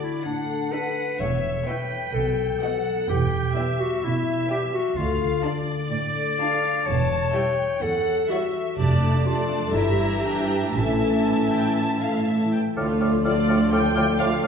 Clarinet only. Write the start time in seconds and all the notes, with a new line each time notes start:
0.01 E4
0.25 D4
0.72 B4
1.20 C#5
1.67 B4
2.13 A4
3.09 G4
3.80 F#4
4.05 E4
4.51 G4
4.74 F#4
4.97 F4
5.92 D5
6.87 C#5
7.82 A4
8.31 F#4
8.78 G4
9.26 F4
9.74 E4
10.24 D4
10.74 C#4
12.76 A4
13.00 A4
13.24 A4
13.48 A4
13.72 A4
13.96 A4
14.19 A4
14.43 A4